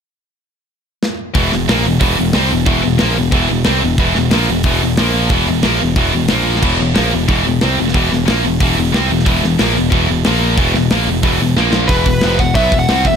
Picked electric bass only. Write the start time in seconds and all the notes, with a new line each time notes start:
1.36 E1
1.53 E1
1.69 A#1
1.86 E1
2.01 E1
2.19 E1
2.36 C2
2.53 E1
2.67 E1
2.86 E1
3.03 A#1
3.19 E1
3.33 E1
3.51 E1
3.67 C2
3.84 E1
3.98 E1
4.16 E1
4.33 A#1
4.50 E1
4.65 E1
4.83 E1
4.99 A#1
5.30 E1
5.48 E1
5.64 A#1
5.83 E1
5.97 E1
6.15 E1
6.31 A#1
6.63 E1
6.80 E1
6.98 A#1
7.14 E1
7.29 E1
7.47 E1
7.63 C2
7.80 E1
7.95 E1
8.12 E1
8.29 A#1
8.46 E1
8.61 E1
8.78 E1
8.93 C2
9.10 E1
9.27 E1
9.43 E1
9.60 A#1
9.77 E1
9.93 E1
10.09 E1
10.26 A#1
10.58 E1
10.76 E1
10.92 A#1
11.08 E1
11.24 E1
11.40 E1
11.57 A#1
11.90 E1
12.06 E1
12.24 F1
12.40 E1
12.55 B1
12.72 E1
12.90 C2
13.05 E1